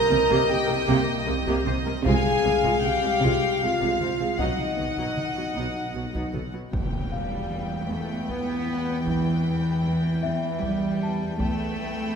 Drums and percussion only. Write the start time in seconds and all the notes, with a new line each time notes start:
0.10 taiko mid
0.30 taiko
0.49 taiko mid
1.47 taiko
1.66 taiko mid
2.05 taiko
2.25 taiko mid
2.45 taiko mid
2.64 taiko
2.84 taiko mid
3.81 taiko
4.00 taiko mid
4.39 taiko
4.58 taiko mid
4.78 taiko mid
4.97 taiko
5.17 taiko mid
6.15 taiko
6.34 taiko mid
6.73 taiko
8.29 taiko
9.07 taiko
10.63 taiko
11.40 taiko